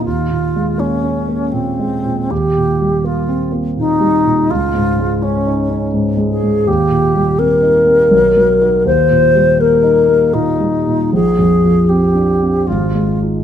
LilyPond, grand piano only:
\new Staff \with { instrumentName = "Grand piano" } { \clef bass \time 3/4 \key ees \major \tempo 4 = 82 \tuplet 3/2 { ees,8 bes,8 aes8 bes8 des'8 bes8 bes,8 aes8 bes,8 } | \tuplet 3/2 { ees,8 bes,8 g8 bes8 c'8 bes8 bes,8 g8 bes,8 } | \tuplet 3/2 { des,8 aes,8 aes8 des'8 ees'8 des'8 aes,8 aes8 aes,8 } | \tuplet 3/2 { ees,8 bes,8 g8 c'8 ees'8 c'8 b,,8 fis8 <dis' fis'>8 } |
\tuplet 3/2 { ees,8 bes,8 g8 bes8 ees'8 bes8 bes,8 g8 bes,8 } | \tuplet 3/2 { bes,,8 f,8 f8 c'8 d'8 c'8 aes,,8 aes8 <ees' f'>8 } | }